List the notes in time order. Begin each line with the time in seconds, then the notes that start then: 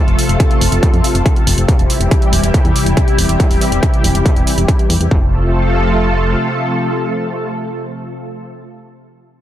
Already playing: C3 F3 A3 F4 A4
0.08 F1, closed hi-hat
0.19 open hi-hat
0.29 F1, closed hi-hat
0.40 kick, closed hi-hat
0.51 closed hi-hat
0.61 F1, open hi-hat
0.72 F1, closed hi-hat
0.83 kick, closed hi-hat
0.94 F2, closed hi-hat
1.04 open hi-hat
1.15 F1, closed hi-hat
1.26 kick, closed hi-hat
1.36 closed hi-hat
1.47 F1, open hi-hat
1.58 F1, closed hi-hat
1.68 E3 G3 E4 G4, kick, closed hi-hat
1.79 E1, closed hi-hat
1.90 open hi-hat
2.01 E1, closed hi-hat
2.11 kick, closed hi-hat
2.22 closed hi-hat
2.33 E1, open hi-hat
2.43 E1, closed hi-hat
2.54 kick, closed hi-hat
2.65 E2, closed hi-hat
2.76 open hi-hat
2.86 E1, closed hi-hat
2.97 kick, closed hi-hat
3.08 closed hi-hat
3.18 E1, open hi-hat
3.29 E1, closed hi-hat
3.40 kick, closed hi-hat
3.51 E1, open hi-hat
3.61 open hi-hat
3.72 E1, closed hi-hat
3.83 kick, closed hi-hat
3.94 closed hi-hat
4.04 E1, open hi-hat
4.15 E1, closed hi-hat
4.26 kick, closed hi-hat
4.36 E1, closed hi-hat
4.47 open hi-hat
4.58 E1, closed hi-hat
4.68 kick, closed hi-hat
4.79 closed hi-hat
4.90 E2, open hi-hat
5.01 E2, closed hi-hat
5.11 F1 C3 F3 A3 F4 A4, kick